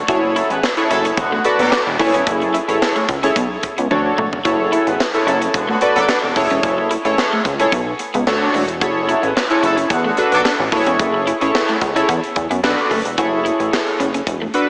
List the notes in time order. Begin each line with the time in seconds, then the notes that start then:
0.08 F#1 E4 F#4 G#4 A4 C#5, kick, closed hi-hat
0.35 F#3 E4 A4, closed hi-hat
0.50 A1 B3 G#4 B4, muted clean electric guitar stroke, closed hi-hat
0.63 muted clean electric guitar stroke, snare, clap
0.77 E4 G#4 A4 C#5, closed hi-hat
0.90 F#1 F#3 C#4 E4 A4, closed hi-hat
1.05 C#4, closed hi-hat
1.17 E1 D3 B3 F#4, kick, closed hi-hat
1.32 D3 A3 B3 F#4
1.44 F#4 A4 B4 D5, muted clean electric guitar stroke, closed hi-hat
1.59 F#1 F#3 B3 D4 A4, closed hi-hat
1.72 D4, snare, clap
1.87 E1
1.99 F#1 E4 G#4 A4 C#5, muted clean electric guitar stroke, kick, open hi-hat
2.14 E1 C#4, closed hi-hat
2.27 F#1, kick, closed hi-hat
2.42 muted clean electric guitar stroke, closed hi-hat
2.54 E4, closed hi-hat
2.68 A1 C#4 E4 G#4 A4 C#5, closed hi-hat
2.82 snare, clap
2.96 A3, closed hi-hat
3.09 C#2, muted clean electric guitar stroke, kick, closed hi-hat
3.23 C#4 E4 G#4 A4 C#5, closed hi-hat
3.36 B1 B3, kick, closed hi-hat
3.63 muted clean electric guitar stroke, kick, closed hi-hat
3.78 C#2 B3, closed hi-hat
3.91 D2 D4 F#4 A4 C#5, high tom
4.18 E1 A3, mid tom
4.33 floor tom
4.45 F#1 E4 F#4 G#4 A4 C#5, kick, closed hi-hat
4.72 F#3 E4 A4, closed hi-hat
4.87 A1 B3 G#4 B4, muted clean electric guitar stroke, closed hi-hat
5.00 muted clean electric guitar stroke, snare, clap
5.14 E4 G#4 A4 C#5, closed hi-hat
5.26 F#1 F#3 C#4 E4 A4, closed hi-hat
5.41 C#4, closed hi-hat
5.54 E1 D3 B3 F#4, kick, closed hi-hat
5.68 D3 A3 B3 F#4
5.81 F#4 A4 B4 D5, muted clean electric guitar stroke, closed hi-hat
5.96 F#1 F#3 B3 D4 A4, closed hi-hat
6.09 D4, snare, clap
6.23 E1
6.36 F#1 E4 G#4 A4 C#5, muted clean electric guitar stroke, kick, open hi-hat
6.50 E1 C#4, closed hi-hat
6.63 F#1, kick, closed hi-hat
6.78 muted clean electric guitar stroke
6.91 E4, closed hi-hat
7.05 A1 C#4 E4 G#4 A4 C#5, closed hi-hat
7.18 snare, clap
7.33 A3
7.45 C#2, muted clean electric guitar stroke, kick, closed hi-hat
7.60 C#4 E4 G#4 A4 C#5, closed hi-hat
7.72 B1 B3, kick, closed hi-hat
7.99 muted clean electric guitar stroke, closed hi-hat
8.14 C#2 B3, closed hi-hat
8.27 D2 D4 F#4 A4 C#5, snare, clap
8.54 E1 A3, open hi-hat
8.68 closed hi-hat
8.81 F#1 E4 F#4 G#4 A4 C#5, kick, closed hi-hat
9.08 F#3 E4 A4, closed hi-hat
9.23 A1 B3 G#4 B4, muted clean electric guitar stroke, closed hi-hat
9.36 muted clean electric guitar stroke, snare, clap
9.50 E4 G#4 A4 C#5, closed hi-hat
9.63 F#1 F#3 C#4 E4 A4, closed hi-hat
9.77 C#4, closed hi-hat
9.90 E2 D3 B3 F#4, kick, closed hi-hat
10.04 D3 A3 B3 F#4
10.17 D4 F#4 A4 B4, muted clean electric guitar stroke, closed hi-hat
10.32 B1 F#3 B3 D4 A4, closed hi-hat
10.45 D4, snare, clap
10.59 A1
10.72 F#1 E4 G#4 A4 C#5, muted clean electric guitar stroke, kick, open hi-hat
10.86 E1 C#4, closed hi-hat
10.99 F#1, kick, closed hi-hat
11.14 muted clean electric guitar stroke
11.27 E4, closed hi-hat
11.41 A1 C#4 E4 G#4 A4 C#5, closed hi-hat
11.55 snare, clap
11.68 A3, closed hi-hat
11.81 C#2, muted clean electric guitar stroke, kick, closed hi-hat
11.95 C#4 E4 G#4 A4 C#5, closed hi-hat
12.09 E2 B3, kick, closed hi-hat
12.24 closed hi-hat
12.36 E2, muted clean electric guitar stroke, kick, closed hi-hat
12.50 F#2 B3, closed hi-hat
12.63 B1 D4 F#4 A4 B4, snare, clap
12.91 F#1 A3, open hi-hat
13.05 E1, closed hi-hat
13.18 F#1 E4 F#4 G#4 A4 C#5, kick, closed hi-hat
13.45 E4, closed hi-hat
13.60 A1, muted clean electric guitar stroke, closed hi-hat
13.73 muted clean electric guitar stroke, snare, clap
13.87 closed hi-hat
14.00 F#1 C#4, closed hi-hat
14.14 C#4, closed hi-hat
14.27 E1, kick, closed hi-hat
14.42 A3
14.54 D4 F#4 A4 B4, muted clean electric guitar stroke, closed hi-hat